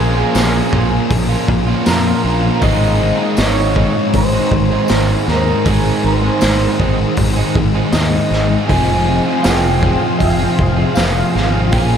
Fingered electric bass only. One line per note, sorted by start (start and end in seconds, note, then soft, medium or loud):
0.00 0.22 A#1 medium
0.35 0.60 A#1 medium
0.73 0.97 A#1 medium
1.10 1.35 A#1 medium
1.48 1.73 A#1 medium
1.87 2.12 F2 medium
2.24 2.49 A#1 medium
2.62 3.11 G#1 medium
3.38 3.87 G#1 medium
4.14 4.38 G#1 medium
4.51 4.76 G#1 medium
4.90 5.15 G#1 medium
5.28 5.52 D#2 medium
5.66 5.90 G#1 medium
6.04 6.28 G#1 medium
6.42 6.66 G#1 medium
6.79 7.04 G#1 medium
7.18 7.42 G#1 medium
7.55 7.80 G#1 medium
7.93 8.17 D#2 medium
8.31 8.55 G#1 medium
8.70 9.18 F1 medium
9.45 9.94 F1 medium
10.21 10.45 F1 medium
10.59 10.84 F1 medium
10.97 11.21 F1 medium
11.35 11.73 G#1 medium
11.73 11.97 A#1 medium